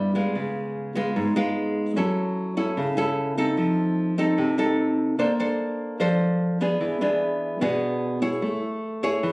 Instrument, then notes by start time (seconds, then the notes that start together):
nylon-string guitar
Already playing: G2 G3 B3 E4
0.15 G#3 B3 F4
0.35 C#3
0.95 G#3 B3 F4
1.16 G#2
1.36 G#3 B3 F4
1.96 F#3 C#4 E4 A4
2.57 C#4 E4 A4
2.77 C#3
2.97 C#4 E4 A4
3.38 C4 D#4 A4
3.57 F3
4.18 C4 D#4 A4
4.38 C3
4.58 C4 D#4 A4
5.19 A#3 D4 A4 C5
5.40 D4 A4 C5
6.00 F3 D4 A4 C5
6.61 B3 D4 G#4
6.81 E3
7.01 B3 D4 G#4
7.61 B2 B3 D4 G#4
8.22 E4 G#4 C#5
8.42 A3
9.03 E4 G#4 C#5
9.23 E3